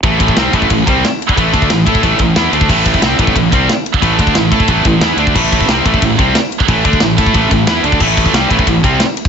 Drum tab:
CC |----------------|----------------|x---------------|----------------|
RD |x-x-x-x-x-x-x-x-|x-x-x-x-x-x-x-x-|--x-x-x-x-x-x-x-|x-x-x-x-x-x-x-x-|
SD |----o-------o---|----o-------o---|----o-------o---|----o-------o---|
BD |o-oo--ooo-o----o|o-oo--ooo-o----o|o-oo--ooo-o----o|o-oo--ooo-o----o|

CC |x---------------|----------------|x---------------|
RD |--x-x-x-x-x-x-x-|x-x-x-x-x-x-x-x-|--x-x-x-x-x-x-x-|
SD |----o-------o---|----o-------o---|----o-------o---|
BD |o-oo--ooo-o----o|o-oo--ooo-o----o|o-oo--ooo-o----o|